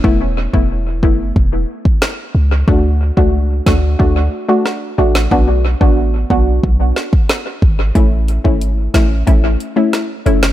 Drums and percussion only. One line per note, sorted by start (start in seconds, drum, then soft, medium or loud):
0.04 kick loud
0.54 kick medium
1.03 kick medium
1.36 kick medium
1.85 kick medium
2.02 cross-stick medium
2.02 snare loud
2.68 kick loud
3.17 kick medium
3.66 kick medium
3.66 snare loud
4.00 kick medium
4.66 cross-stick medium
4.66 snare medium
5.15 snare loud
5.31 kick loud
5.81 kick medium
6.30 kick medium
6.64 kick medium
6.96 snare medium
7.13 kick medium
7.29 cross-stick medium
7.29 snare loud
7.62 kick medium
7.95 kick loud
7.95 closed hi-hat medium
8.28 closed hi-hat medium
8.45 kick medium
8.61 closed hi-hat medium
8.94 kick medium
8.94 snare loud
8.94 closed hi-hat medium
9.27 kick medium
9.27 closed hi-hat medium
9.60 closed hi-hat medium
9.93 cross-stick medium
9.93 snare medium
9.93 closed hi-hat medium
10.26 closed hi-hat soft
10.43 snare loud